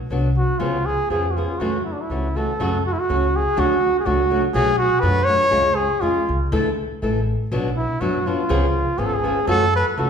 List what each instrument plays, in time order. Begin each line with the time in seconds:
0.10 upright bass C2, nylon-string guitar F#3 B3 D4 F#4
0.37 trumpet F#4
0.59 upright bass C#2, nylon-string guitar C#3 F3 B3 C#4 G#4, trumpet F4
0.86 trumpet G#4
1.10 upright bass F2, nylon-string guitar F3 B3 C#4 G#4, trumpet G#4
1.31 trumpet F#4
1.36 nylon-string guitar F3 B3 C#4 G#4, trumpet F4
1.59 nylon-string guitar F#2 C#3 E3 A3 C#4 F#4, upright bass F#2, trumpet F#4
1.85 trumpet E4
1.93 trumpet D4
2.01 trumpet E4
2.10 upright bass C#2, nylon-string guitar E3 A3 C#4 F#4
2.36 nylon-string guitar E3 A3 C#4 F#4, trumpet A4
2.60 nylon-string guitar F#2 C#3 F#3 A3 C#4 F#4, upright bass F#2
2.86 trumpet F#4
2.93 trumpet E4
3.00 trumpet F#4
3.09 upright bass C#2, nylon-string guitar F#3 A3 C#4 F#4
3.36 trumpet G#4
3.56 upright bass D2, nylon-string guitar D3 F#3 A3 D4 F#4, trumpet F#4
4.00 trumpet G#4
4.05 upright bass C#2, nylon-string guitar F#3 A3 D4 F#4, trumpet F#4
4.30 nylon-string guitar F#3 A3 D4 F#4
4.54 upright bass B1, nylon-string guitar B2 F#3 A3 D4 F#4, trumpet G#4
4.78 trumpet F#4
5.00 upright bass F#2, nylon-string guitar F#3 A3 D4, trumpet B4
5.04 nylon-string guitar F#4
5.24 nylon-string guitar F#3, trumpet C#5
5.29 nylon-string guitar A3 D4 F#4
5.51 upright bass C#2, nylon-string guitar C#3 G#3 C#4 F4 G#4
5.75 trumpet G#4
6.01 upright bass F2, nylon-string guitar G#3 C#4 F4 G#4, trumpet F4
6.29 upright bass C#2
6.52 upright bass D2, nylon-string guitar D3 E3 A3 E4 A4
7.02 upright bass A1, nylon-string guitar E3 A3 E4 A4
7.51 upright bass B1, nylon-string guitar B2 F#3 B3 D4 F#4
7.77 trumpet E4
8.01 upright bass F#2, nylon-string guitar F#3 B3 D4 F#4, trumpet F#4
8.26 nylon-string guitar F#3 B3 D4 F#4, trumpet F4
8.49 upright bass C#2, nylon-string guitar C#3 F3 B3 C#4 G#4
8.98 upright bass G#1, nylon-string guitar F3 B3 C#4 G#4, trumpet G#4
9.06 trumpet A4
9.14 trumpet G#4
9.24 nylon-string guitar F3 B3 C#4 G#4
9.47 nylon-string guitar F#2 C#3 E3 A3 C#4 F#4, upright bass F#2, trumpet A4
9.76 trumpet B4
9.97 upright bass C#2, nylon-string guitar E3 A3 C#4 F#4, trumpet A4